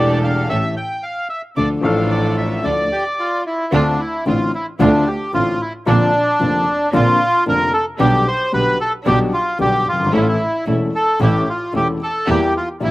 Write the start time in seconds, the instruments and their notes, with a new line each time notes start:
Already playing: grand piano E1 E2 E3 A3 D4 G4, double bass E1, string section D4 G4 A4, bandoneon D5
0.24 bandoneon F5
0.49 grand piano A1 A2 E3 A3 C#4 G4, double bass A1, string section C#4 G4 A4, bandoneon E5
0.77 bandoneon G5
1.03 bandoneon F5
1.29 bandoneon E5
1.56 double bass D2, grand piano D2 D3 F3 A3 D4 A4, string section D4 F4 A4, bandoneon D5
1.81 grand piano A1 A2 F3 A3 D4 A4, double bass A1, string section D4 F4 A4, bandoneon F5
2.11 bandoneon D5
2.38 bandoneon E5
2.63 grand piano D2 D3 F3 A3 D4 A4, double bass D2, string section D4 F4 A4, bandoneon D5
2.92 bandoneon G4
3.20 bandoneon F4
3.46 bandoneon E4
3.72 grand piano D2 D3 A3 C4 F4, double bass D2, string section C4 D4 F4, bandoneon D4
4.00 bandoneon E4
4.26 grand piano A1 A2 D3 A3 C4 F4, double bass A1, string section C4 D4 F4, bandoneon F4
4.55 bandoneon E4
4.79 grand piano D2 D3 A3 C4 F4, double bass D2, string section C4 D4 F4, bandoneon D4
5.07 bandoneon G4
5.33 grand piano A1 A2 D3 A3 C4 F4, double bass A1, string section C4 D4 F4, bandoneon F4
5.61 bandoneon E4
5.86 grand piano A#1 A#2 D3 A#3 C4 F4, double bass A#1, string section A#3 C4 D4, bandoneon D4
6.39 grand piano F1 F2 D3 A#3 C4 F4, double bass F1, string section A#3 C4 D4
6.93 grand piano A#1 A#2 D3 A#3 C4 F4, double bass A#1, string section A#3 C4 D4, bandoneon F4
7.46 grand piano F1 F2 D3 A#3 C4 F4, double bass F1, string section A#3 C4 D4, bandoneon A#4
7.73 bandoneon A4
7.99 double bass B1, grand piano B1 B2 D3 G3 B3 G4, string section G3 B3 D4, bandoneon G4
8.28 bandoneon C5
8.52 grand piano B1 B2 D3 G3 B3 G4, double bass B1, string section G3 B3 D4, bandoneon B4
8.81 bandoneon A4
9.06 double bass B1, grand piano B1 B2 D3 G3 B3 G4, string section G3 B3 D4, bandoneon G4
9.34 bandoneon F4
9.59 grand piano B1 B2 D3 G3 B3 G4, double bass B1, string section G3 B3 D4, bandoneon G4
9.86 double bass G1, bandoneon F4
9.93 grand piano F#1
10.00 grand piano G1
10.06 grand piano G#1
10.12 grand piano A1 A2 E3 A3 C#4 A4, double bass A1, string section A3 C#4 E4, bandoneon E4
10.21 bandoneon F4
10.29 bandoneon E4
10.66 double bass E1, grand piano E1 E2 E3 A3 C#4 A4, string section A3 C#4 E4
10.95 bandoneon A4
11.20 double bass A1, grand piano A1 A2 E3 A3 C#4 A4, string section A3 C#4 E4, bandoneon G4
11.49 bandoneon F4
11.73 grand piano E1 E2 E3 A3 C#4 A4, double bass E1, string section A3 C#4 E4, bandoneon G4
12.03 bandoneon A4
12.27 grand piano E2 E3 G3 A#3 G4, double bass E2, string section A#3 E4 G4, bandoneon G4
12.57 bandoneon F4
12.80 grand piano A#1 A#2 E3 G3 A#3 G4, double bass A#1, string section A#3 E4 G4, bandoneon E4